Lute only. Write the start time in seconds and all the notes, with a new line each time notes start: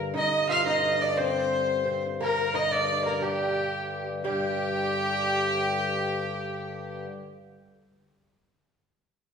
0.14 D#4
0.49 F4
0.66 D#4
1.01 D4
1.17 C4
1.86 C4
2.21 A#3
2.54 D#4
2.72 D4
3.06 A#3
3.22 G3
4.25 G3